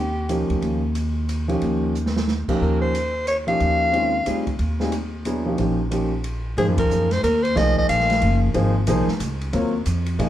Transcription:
Already playing: D#2 G4
0.29 F3 A#3 C#4 D#4 G4, hi-hat pedal, ride
0.49 D2, ride
0.62 D#2, ride
0.95 hi-hat pedal, ride
1.29 hi-hat pedal, ride
1.48 F3 A#3 C#4 D#4 G4, ride
1.61 D#2, ride
1.95 hi-hat pedal
2.06 snare
2.16 snare
2.28 snare
2.48 F3 A#3 C#4 D#4 G4, muted upright bass stroke, kick, crash
2.61 D#2 A#4
2.82 C5
2.95 hi-hat pedal, ride
3.27 C#5, hi-hat pedal, ride
3.47 F3 A#3 C#4 D#4 G4 F5, ride
3.60 D#2, ride
3.93 D#3 G#3 C4 C#4 F4, ride
4.26 D2 G3 C4 D#4 F4 G#4, hi-hat pedal, ride
4.47 kick, ride
4.59 D#2, ride
4.80 G3 C4 D#4 F4 G#4, snare
4.92 hi-hat pedal, ride
5.25 F#3 B3 D4 E4 G#4, hi-hat pedal, ride
5.46 F3 A#3 C#4 D#4 G4
5.58 A#1 F3 A#3 C#4 D#4 G4, ride
5.91 F3 A#3 C#4 D#4 G4, hi-hat pedal, ride
6.24 ride
6.57 G#2 F3 A#3 D#4 G#4 C5, ride
6.68 F#2
6.78 D#2 A#4, kick, ride
6.90 F#2, hi-hat pedal
7.11 C5, snare, ride
7.23 D#2 A#4, hi-hat pedal, ride
7.43 C5, ride
7.55 C2 F3 A#3 D#4 G#4 C5 D#5, snare, ride
7.76 D#5, kick
7.89 A#1 F5, hi-hat pedal, ride
8.00 snare
8.10 snare, ride
8.22 F#1, ride
8.54 G#1 F3 A#3 D#4 G#4 C5, ride
8.87 C2 F3 A#3 D#4 G#4 C5, hi-hat pedal, ride
9.07 muted upright bass stroke, snare
9.20 C#2, hi-hat pedal, ride
9.41 ride
9.53 D#2 F#3 C4 F4 A#4 C#5, ride
9.86 F2, hi-hat pedal, ride
10.06 ride
10.19 A#2 F3 A#3 D#4 G#4 D#5, ride

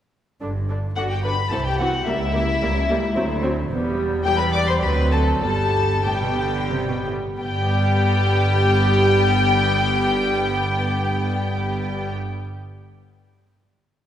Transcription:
0.41 G1 G2 D3 D4
0.70 D3 D4
0.96 G1 G2 D3 D4 F#4 F#5
1.10 G4 G5
1.24 D3 D4 B4 B5
1.51 C2 E3 C4 A4 A5
1.66 G4 G5
1.79 E3 C4 F#4 F#5
2.05 C#2 G3 A#3 E4 E5
2.34 G3 A#3
2.61 C#2 G3 A#3
2.90 G3 A#3
3.16 D2 F#3 C4
3.43 F#3 C4
3.69 E1 E2 G3 B3
4.24 G3 B3 G4 G5
4.38 B4 B5
4.53 D5 D6
4.67 C5 C6
4.81 D2 F#3 C4 B4 B5
5.12 A4 A5
5.41 G1 G2 G3 B3 A4 A5
6.05 A2 G3 B3 G4 G5
6.21 B2
6.37 D3
6.71 C3
6.88 B2
7.05 A2
7.39 G1 G2 G3 B3 G4 G5

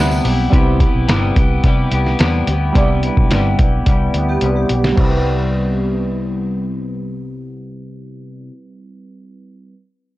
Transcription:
Already playing: D2 C3 G3 B3 C4 E4
0.00 E4 G4 B4
0.11 tambourine
0.24 B1 B3 E4 G4, open hi-hat
0.50 C2 C3 G3 B3 C4 E4 G4, kick, closed hi-hat
0.55 B4
0.80 B3 E4 G4, kick, closed hi-hat
0.95 B1
1.08 G1 C3 G3 B3 E4 G4, snare, closed hi-hat
1.36 C2 B3 E4 G4, kick, closed hi-hat
1.64 C3 G3 B3 E4 G4, kick, closed hi-hat
1.91 C2 B3 E4 G4, closed hi-hat
2.06 snare
2.19 E2 C3 G3 B3 E4 G4, snare, closed hi-hat
2.47 D2 B3 E4 G4, closed hi-hat
2.73 C2 C3 G3 B3 D4 E4, kick, closed hi-hat
2.77 G4 D5
2.83 E4
3.03 B3 E4 G4, closed hi-hat
3.17 B1, kick
3.31 G1 C3 G3 B3 E4 G4, snare, closed hi-hat
3.59 B1 B3 E4 G4, kick, closed hi-hat
3.86 C2 G3 B3 E4 G4, kick, closed hi-hat
4.14 D2 B3 E4 G4, closed hi-hat
4.29 B3 G4
4.41 C2 C3 G3 B3 E4 G4 B4, closed hi-hat
4.56 B3 G4
4.69 B1 B3 E4 G4, closed hi-hat
4.84 snare
4.93 C3 G3 C4
4.98 C2 G3 B3 E4, kick, crash
5.02 E4 G4 B4

